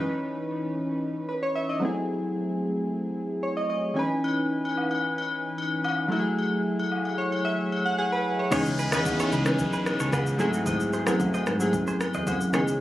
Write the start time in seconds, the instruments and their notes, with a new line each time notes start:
Already playing: synth keys E3 C#4 D#4 B4
1.29 synth keys B4
1.43 synth keys C#5
1.55 synth keys E5
1.69 synth keys D#5
1.80 synth keys F#3 A3 C4 E4
1.85 synth keys G#4
3.43 synth keys C#5
3.57 synth keys D#5
3.70 synth keys D#5
3.94 synth keys E3 C#4 D#4 G#5
3.99 synth keys B4
4.24 high agogo
4.65 high agogo
4.77 low woodblock
4.91 high agogo
5.18 high agogo
5.58 high agogo
5.84 high agogo, low woodblock
6.08 synth keys F#3 A3 E4, high agogo
6.13 synth keys F#4
6.19 synth keys G#4
6.38 high agogo
6.79 high agogo
6.92 low woodblock
7.05 high agogo
7.18 synth keys C#5
7.32 high agogo
7.45 synth keys E5
7.72 high agogo
7.85 synth keys F#5
7.98 synth keys G#4 F#5
8.12 synth keys B4
8.39 synth keys C#5
8.51 tine electric piano C#2, synth keys E3 B3 C#4 D#4 G#4, clean electric guitar G#4 C#5, kick, downlifter, high agogo, shaker
8.66 shaker
8.79 clean electric guitar G#4 B4, shaker
8.91 tine electric piano E2, synth keys E3 B3 C#4 D#4 B4, clean electric guitar G#4 B4, cross-stick, high agogo, shaker
9.05 kick, low woodblock, shaker
9.19 clean electric guitar A4 C#5, high agogo, shaker
9.32 tine electric piano C#2, clean electric guitar G#4 B4, shaker
9.45 synth keys E3 B3 C#4 D#4 G#4, cross-stick, high agogo, shaker
9.59 tine electric piano B1, kick, shaker
9.73 clean electric guitar G#4 B4, shaker
9.86 cross-stick, high agogo, shaker
10.00 tine electric piano C#2, clean electric guitar A4 C#5, shaker
10.12 tine electric piano C#2, clean electric guitar G#4 B4, kick, cross-stick, high agogo, low woodblock, shaker
10.26 shaker
10.38 tine electric piano G#2, synth keys F#3 A3 C4 E4 G#4, clean electric guitar E4 G#4, high agogo, shaker
10.53 clean electric guitar D#4 F#4, shaker
10.66 clean electric guitar C5 D#5, kick, high agogo, shaker
10.80 shaker
10.93 clean electric guitar G#4 C5, shaker
11.06 tine electric piano F#2, synth keys F#3 A3 C4 E4 G#4, clean electric guitar G#4 C5, cross-stick, high agogo, shaker
11.20 kick, low woodblock, shaker
11.34 clean electric guitar C5 D#5, high agogo, shaker
11.46 tine electric piano G#2, clean electric guitar G#4 C5, cross-stick, shaker
11.59 synth keys F#3 A3 C4 E4 G#4, high agogo, shaker
11.73 tine electric piano F#2, kick, shaker
11.87 clean electric guitar G#4 C5, shaker
12.01 cross-stick, high agogo, shaker
12.14 tine electric piano E2, clean electric guitar C5 D#5, shaker
12.27 tine electric piano F#2, clean electric guitar G#4 C5, kick, high agogo, low woodblock, shaker
12.41 shaker
12.52 tine electric piano C#2, synth keys D#3 B3 C#4 D#4 G#4, clean electric guitar G#4 C#5, cross-stick, high agogo, shaker
12.59 synth keys E3
12.68 shaker